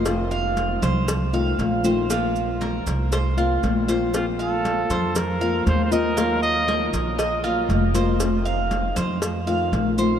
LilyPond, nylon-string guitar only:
\new Staff \with { instrumentName = "Nylon-string guitar" } { \time 4/4 \key f \phrygian \tempo 4 = 118 <c ees a c' f'>2 r8 <ees a c' f'>8 <ees a c' f'>8 <ees a c' f'>8 | <f bes c' f'>2 r8 <bes c' f'>8 <f bes c' f'>8 <bes c' f'>8 | <f bes c' f'>2 r8 <bes c' f'>8 <f bes c' f'>8 <bes c' f'>8 | <ees ges bes f'>2 r8 <ges bes f'>8 <ees ges bes f'>8 <ges bes f'>8 |
<c ees a c' f'>2 r8 <ees a c' f'>8 <ees a c' f'>8 <ees a c' f'>8 | }